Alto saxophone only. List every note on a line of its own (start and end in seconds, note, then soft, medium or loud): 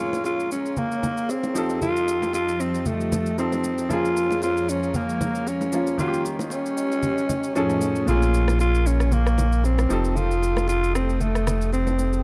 0.00 0.25 F4 loud
0.26 0.50 F4 loud
0.52 0.79 C#4 medium
0.78 1.32 A#3 loud
1.30 1.82 C4 medium
1.82 2.30 F4 loud
2.35 2.62 F4 loud
2.61 2.88 C4 medium
2.86 3.38 A3 medium
3.39 3.92 C4 medium
3.91 4.43 F4 loud
4.43 4.71 F4 loud
4.70 4.97 C#4 medium
4.96 5.49 A#3 medium
5.48 5.99 C#4 medium
6.00 6.24 F4 medium
6.53 7.52 C#4 loud
7.57 8.05 C#4 loud
8.09 8.57 F4 loud
8.61 8.88 F4 loud
8.87 9.14 C#4 medium
9.13 9.65 A#3 loud
9.65 10.18 C4 medium
10.17 10.68 F4 loud
10.69 10.93 F4 loud
10.95 11.22 C4 medium
11.21 11.73 A3 medium
11.73 12.22 C4 medium